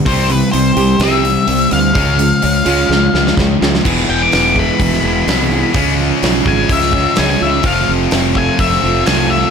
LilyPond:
<<
  \new Staff \with { instrumentName = "Lead electric guitar" } { \time 4/4 \key cis \phrygian \tempo 4 = 126 c''8 b'8 c''4 e''4. f''8~ | f''2. r4 | r8 g''16 d'''8. b''2~ b''8~ | b''8 r4 gis''8 e''4 gis''16 gis''16 e''8 |
f''8 r4 gis''8 e''4 gis''16 gis''16 e''8 | }
  \new Staff \with { instrumentName = "Distorted electric guitar" } { \clef bass \time 4/4 \key cis \phrygian <c g c'>8 <c g>8 <c g>8 <c g>8 <c g c'>8 <c g>8 <c g>8 <c g>8 | <cis gis cis'>8 <cis gis>8 <cis gis>8 <cis gis cis'>8 <cis gis>8 <cis gis>8 <cis gis>8 <cis gis>8 | <e gis b e'>2~ <e gis b e'>8 <e gis b e'>8 <e gis b e'>4 | <cis gis cis' eis'>2~ <cis gis cis' eis'>8 <cis gis cis' eis'>8 <cis gis cis' eis'>4 |
<f a c' f'>2~ <f a c' f'>8 <f a c' f'>8 <f a c' f'>4 | }
  \new Staff \with { instrumentName = "Steel-string acoustic guitar" } { \clef bass \time 4/4 \key cis \phrygian c8 e8 c'8 g'8 c'8 g8 c'8 e8 | cis8 eis8 cis'8 eis'8 cis'8 gis8 cis'8 eis8 | e,8 b,8 e8 gis8 e8 b8 gis8 e'8 | cis8 eis8 eis8 gis8 eis8 cis'8 gis8 eis'8 |
f,8 c8 f8 a8 f8 c'8 a8 f'8 | }
  \new Staff \with { instrumentName = "Distorted electric guitar" } { \clef bass \time 4/4 \key cis \phrygian <c g c'>8 <c g>8 <c g>8 <c g>8 <c g c'>8 <c g>8 <c g>8 <c g>8 | <cis gis cis'>8 <cis gis>8 <cis gis>8 <cis gis cis'>8 <cis gis>8 <cis gis>8 <cis gis>8 <cis gis>8 | <e, b, e>1 | <cis gis cis'>1 |
<f, c f>1 | }
  \new Staff \with { instrumentName = "Fingered electric bass" } { \clef bass \time 4/4 \key cis \phrygian c,4 c,8 c,8 c,4 c,8 d,8 | cis,4 cis,8 cis,8 cis,8 cis,8 cis,8 cis,8 | e,,8 e,,8 e,,4 e,,8 e,,8 c,4 | cis,4 b,,8 gis,,8 cis,4 cis,8 cis,8 |
f,,8 f,,8 f,,4 f,,8 f,,8 c,4 | }
  \new DrumStaff \with { instrumentName = "Drums" } \drummode { \time 4/4 <hho bd>8 hho8 hho8 hho8 <hho sn>8 hho8 hho8 hho8 | <hho bd>8 hho8 hho8 hho8 sn8 sn16 sn16 <bd sn>8 sn16 sn16 | <cymc bd>4 <hho sn>8 bd8 <hho bd>16 sn8. <hho sn>16 sn8. | <hho bd>4 <hho sn>8 bd8 <hho bd>16 sn16 bd8 <hho sn>16 sn8. |
<hho bd>4 <hho sn>8 bd8 <hho bd>16 sn8. <hho sn>4 | }
>>